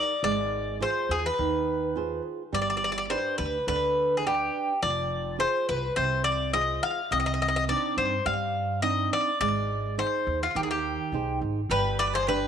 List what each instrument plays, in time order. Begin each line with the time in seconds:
Already playing: nylon-string guitar D#4 G4 A#4, bouzouki D5
0.23 upright bass G#1, nylon-string guitar G#3, bouzouki D5
0.80 nylon-string guitar F4 G#4 C5, bouzouki C5
1.09 upright bass D#2, bouzouki G#4
1.26 bouzouki B4
1.39 upright bass D#2, nylon-string guitar D#3
1.96 nylon-string guitar F4 G#4 C5
2.53 upright bass G1, nylon-string guitar G3, bouzouki D5
2.62 bouzouki D5
2.70 bouzouki D5
2.77 bouzouki D5
2.84 bouzouki D5
2.92 bouzouki D5
2.98 bouzouki D5
3.10 nylon-string guitar D4 G4 B4, bouzouki C5
3.38 upright bass D2, bouzouki B4
3.67 upright bass D2, nylon-string guitar D3, bouzouki B4
4.17 bouzouki G#4
4.26 nylon-string guitar D4 G4 B4, bouzouki G4
4.82 upright bass F1, nylon-string guitar F3, bouzouki D5
5.38 nylon-string guitar F4 G#4 C5, bouzouki C5
5.69 upright bass C2, bouzouki B4
5.96 upright bass C2, nylon-string guitar C3, bouzouki C5
6.24 bouzouki D5
6.53 nylon-string guitar F4 G#4 C5, bouzouki D#5
6.83 bouzouki F5
7.11 upright bass C2, nylon-string guitar C3, bouzouki D#5
7.20 bouzouki D#5
7.26 bouzouki D#5
7.34 bouzouki D#5
7.42 bouzouki D#5
7.48 bouzouki D#5
7.56 bouzouki D#5
7.68 nylon-string guitar C4 D4 D#4, bouzouki D5
7.97 upright bass G2, bouzouki C5
8.25 upright bass G2, nylon-string guitar G3, bouzouki F5
8.82 nylon-string guitar C4 D4 D#4, bouzouki D#5
9.13 bouzouki D5
9.41 upright bass G#1, nylon-string guitar G#3, bouzouki D5
9.98 nylon-string guitar D#4 G#4 C5, bouzouki C5
10.27 upright bass D#2
10.43 bouzouki F4
10.55 upright bass D#2, nylon-string guitar D#3, bouzouki G4
10.63 bouzouki G#4
10.71 bouzouki G4
11.12 upright bass B1, nylon-string guitar D#4 G#4 C5
11.41 upright bass G#1
11.70 upright bass G1, nylon-string guitar G3, mandolin G4, bouzouki B4
11.99 mandolin B4, bouzouki D5
12.14 mandolin G#4, bouzouki C5
12.27 nylon-string guitar D4 G4 B4, mandolin G4, bouzouki B4